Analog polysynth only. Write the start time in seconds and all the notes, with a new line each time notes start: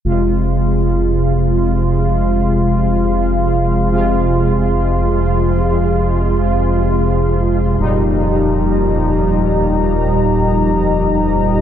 0.05 C3 G#3 F4
3.92 C3 G#3 F4
7.79 A#2 G3 D#4